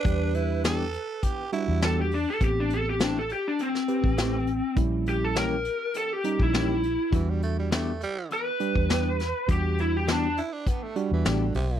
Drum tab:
HH |x-x-x-x-x-x-x-o-|x-x-x-x-x-x-x-x-|x-x-x-x-x-x-x-x-|x-x-x-x-x-x-x-x-|
SD |----o-------o---|----o----o--o---|----o-------o---|----o-------o-o-|
BD |o-------o-------|o----------o----|o----------o----|o----------o----|

HH |x-x-x-x-x-x-x-o-|
SD |----o-------o---|
BD |o-------o-------|